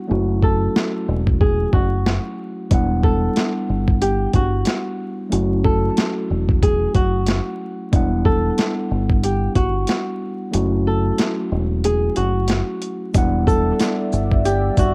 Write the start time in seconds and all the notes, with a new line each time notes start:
0.07 F#1 F#3 A3 C#4 E4 F#4
0.43 A4, kick
0.76 snare
1.08 E1
1.27 kick
1.41 G#4, kick
1.73 F#1 F#4, kick
2.06 snare
2.70 E1 G3 B3 D4 E4, kick, closed hi-hat
2.74 F#5
3.03 A4, kick
3.36 snare, closed hi-hat
3.69 G1
3.88 kick
4.02 G4, closed hi-hat
4.33 G1 F#4, kick, closed hi-hat
4.65 snare, closed hi-hat
5.29 F#1 F#3 A3 C#4 E4, closed hi-hat
5.33 F#4
5.64 A4, kick
5.97 snare, closed hi-hat
6.30 E1
6.49 kick
6.63 G#4, kick, closed hi-hat
6.95 F#1 F#4, kick, closed hi-hat
7.26 snare, closed hi-hat
7.92 E1 G3 B3 D4 E4 F#5, kick, closed hi-hat
8.25 A4, kick
8.58 snare, closed hi-hat
8.91 G1
9.10 kick
9.24 G4, closed hi-hat
9.56 G1 F#4, kick, closed hi-hat
9.87 snare, closed hi-hat
10.51 F#1 F#3 A3 C#4 E4, closed hi-hat
10.55 F#4
10.87 A4
11.18 snare, closed hi-hat
11.52 E1
11.84 G#4, closed hi-hat
12.16 F#1 F#4, closed hi-hat
12.48 snare, closed hi-hat
12.82 closed hi-hat
13.14 E1 G3 B3 D4 E4 D5 E5 F#5 E6, kick, closed hi-hat, shaker
13.18 F#5
13.47 A4, kick, shaker
13.79 snare, closed hi-hat, shaker
14.12 G1, shaker
14.31 kick
14.45 G4, closed hi-hat, shaker
14.77 G1 F#4, kick, closed hi-hat, shaker